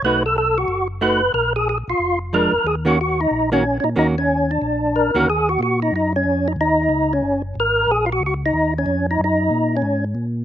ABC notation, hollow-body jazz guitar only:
X:1
M:4/4
L:1/8
Q:"Swing" 1/4=184
K:Ebm
V:1 name="Hollow-body jazz guitar"
[=A,^D^F] z4 z [A,DF] z | z6 [F,A,=D] z | z [E,B,DG] z3 [E,B,DG] z2 | [E,B,DG] z6 [E,B,DG] |
z8 | z8 | z8 | z8 |]